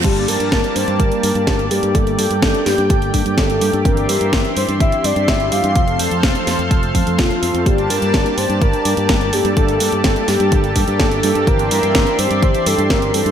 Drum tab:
CC |x---------------|----------------|----------------|----------------|
HH |xxoxxxoxxxoxxxox|xxoxxxoxxxoxxxox|xxoxxxoxxxoxxxox|xxoxxxoxxxoxxxox|
SD |----o-------o---|----o-o-----o---|----o-------o---|----o-o-----o---|
BD |o---o---o---o---|o---o---o-o-o---|o---o---o---o---|o---o---o-o-o---|

CC |----------------|----------------|----------------|
HH |xxoxxxoxxxoxxxox|xxoxxxoxxxoxxxox|xxoxxxoxxxoxxxox|
SD |----o-------o---|----o-o-----o---|----o-------o---|
BD |o---o---o---o---|o---o---o-o-o---|o---o---o---o---|